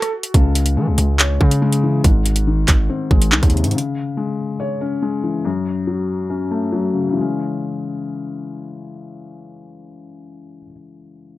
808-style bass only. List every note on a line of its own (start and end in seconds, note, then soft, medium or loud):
0.34 0.78 C#2 loud
0.77 0.89 E3 loud
0.87 0.98 C#2 loud
0.98 1.39 C#2 loud
1.41 2.02 C#3 loud
2.04 2.66 G#1 loud
2.68 2.89 G#1 loud
3.11 3.34 G#1 loud
3.32 3.42 C2 loud
3.43 3.65 D#2 loud
3.64 3.74 G#2 loud